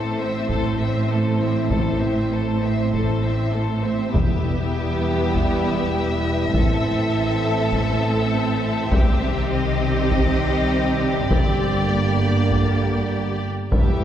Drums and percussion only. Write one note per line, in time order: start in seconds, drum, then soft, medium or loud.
0.50 taiko medium
1.70 taiko medium
2.93 taiko medium
4.15 taiko medium
5.35 taiko medium
6.54 taiko medium
7.73 taiko medium
8.92 taiko medium
10.11 taiko medium
11.31 taiko medium
12.51 taiko medium
13.72 taiko medium